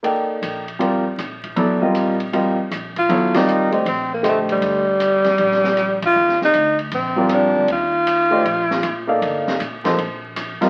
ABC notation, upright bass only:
X:1
M:4/4
L:1/8
Q:"Swing" 1/4=157
K:Eblyd
V:1 name="Upright bass" clef=bass
z2 B,,,3 z B,,,2- | B,,, z B,,,3 z B,,,2 | E,,4 B,,,4 | G,,,3 _F,, B,,,4 |
E,,2 D,,2 B,,,3 D,, | E,,4 B,,,2 B,,2 | G,,,2 B,,2 B,,,3 z |]